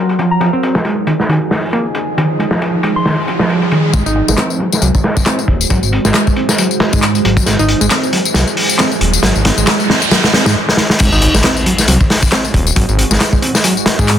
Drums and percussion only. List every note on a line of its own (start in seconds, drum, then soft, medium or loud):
0.09 closed hi-hat soft
0.19 closed hi-hat medium
0.41 closed hi-hat medium
0.63 closed hi-hat medium
0.75 snare medium
0.85 closed hi-hat medium
1.07 closed hi-hat medium
1.20 snare soft
1.30 closed hi-hat medium
1.51 snare medium
1.51 open hi-hat medium
1.73 closed hi-hat medium
1.95 closed hi-hat medium
2.18 closed hi-hat medium
2.40 closed hi-hat medium
2.51 snare medium
2.62 closed hi-hat medium
2.83 closed hi-hat medium
3.06 snare soft
3.06 open hi-hat medium
3.28 closed hi-hat medium
3.39 snare medium
3.50 closed hi-hat medium
3.62 closed hi-hat soft
3.71 closed hi-hat medium
3.94 kick loud
3.94 closed hi-hat medium
3.94 tambourine medium
4.06 tambourine soft
4.15 closed hi-hat medium
4.28 snare medium
4.28 tambourine medium
4.38 snare loud
4.38 clap loud
4.38 closed hi-hat medium
4.38 tambourine medium
4.50 tambourine soft
4.60 closed hi-hat medium
4.72 snare soft
4.72 tambourine medium
4.82 closed hi-hat medium
4.82 tambourine medium
4.95 kick medium
4.95 tambourine soft
5.04 snare medium
5.04 open hi-hat medium
5.17 kick loud
5.17 tambourine medium
5.26 snare loud
5.26 clap loud
5.26 closed hi-hat medium
5.26 tambourine medium
5.39 tambourine soft
5.48 kick medium
5.48 closed hi-hat medium
5.61 tambourine medium
5.70 kick loud
5.70 closed hi-hat medium
5.70 tambourine medium
5.83 tambourine soft
5.93 closed hi-hat medium
6.05 snare medium
6.05 tambourine medium
6.14 snare loud
6.14 clap loud
6.14 closed hi-hat medium
6.14 tambourine medium
6.27 kick loud
6.27 tambourine soft
6.36 closed hi-hat medium
6.49 snare medium
6.49 tambourine medium
6.58 closed hi-hat medium
6.58 tambourine medium
6.71 tambourine soft
6.80 snare loud
6.80 closed hi-hat medium
6.93 kick loud
6.93 tambourine medium
7.02 clap loud
7.02 closed hi-hat medium
7.02 tambourine medium
7.15 closed hi-hat soft
7.15 tambourine soft
7.25 closed hi-hat medium
7.37 kick loud
7.37 tambourine medium
7.46 snare soft
7.46 closed hi-hat medium
7.46 tambourine medium
7.59 tambourine soft
7.69 closed hi-hat medium
7.81 tambourine medium
7.91 snare medium
7.91 clap loud
7.91 closed hi-hat medium
7.91 tambourine medium
8.03 tambourine soft
8.13 closed hi-hat medium
8.25 tambourine medium
8.34 snare medium
8.34 closed hi-hat medium
8.34 tambourine medium
8.47 tambourine soft
8.57 open hi-hat medium
8.70 tambourine medium
8.79 snare medium
8.79 clap loud
8.79 closed hi-hat medium
8.79 tambourine medium
8.92 tambourine soft
9.01 closed hi-hat medium
9.13 tambourine medium
9.23 snare medium
9.23 closed hi-hat medium
9.36 tambourine soft
9.45 snare medium
9.45 closed hi-hat medium
9.58 tambourine medium
9.67 snare medium
9.67 clap loud
9.67 closed hi-hat medium
9.67 tambourine medium
9.80 tambourine soft
9.90 snare medium
10.02 tambourine medium
10.11 snare medium
10.11 closed hi-hat medium
10.11 tambourine medium
10.24 snare medium
10.24 tambourine soft
10.33 snare medium
10.33 closed hi-hat medium
10.46 snare medium
10.46 tambourine medium
10.69 snare medium
10.77 snare medium
10.90 snare medium
10.99 kick loud
10.99 closed hi-hat medium
10.99 crash loud
10.99 tambourine medium
11.12 tambourine soft
11.22 closed hi-hat medium
11.34 snare medium
11.34 tambourine medium
11.43 snare loud
11.43 clap loud
11.43 closed hi-hat medium
11.43 tambourine medium
11.57 tambourine soft
11.66 closed hi-hat medium
11.78 snare soft
11.78 tambourine medium
11.88 closed hi-hat loud
11.88 tambourine medium
12.01 kick medium
12.01 tambourine soft
12.10 snare medium
12.10 open hi-hat medium
12.23 kick medium
12.23 tambourine medium
12.31 snare loud
12.31 clap loud
12.31 closed hi-hat medium
12.31 tambourine medium
12.45 tambourine soft
12.54 kick loud
12.54 closed hi-hat medium
12.67 tambourine medium
12.76 kick loud
12.76 closed hi-hat medium
12.76 tambourine medium
12.89 tambourine soft
12.99 closed hi-hat medium
13.11 snare medium
13.11 tambourine medium
13.20 snare loud
13.20 clap loud
13.20 closed hi-hat loud
13.20 tambourine medium
13.33 kick loud
13.33 tambourine soft
13.42 closed hi-hat medium
13.55 snare medium
13.55 tambourine medium
13.64 closed hi-hat loud
13.64 tambourine medium
13.77 tambourine soft
13.86 snare loud
13.86 closed hi-hat medium
13.99 kick medium
13.99 tambourine medium
14.08 clap loud
14.08 closed hi-hat medium
14.08 tambourine medium